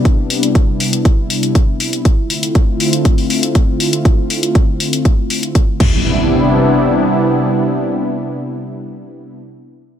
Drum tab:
CC |----------------|----------------|--------------x-|----------------|
HH |x-oxx-oxx-oxx-ox|x-oxx-oxxooxx-ox|x-oxx-oxx-oxx---|----------------|
BD |o---o---o---o---|o---o---o---o---|o---o---o---o-o-|----------------|

CC |----------------|
HH |----------------|
BD |----------------|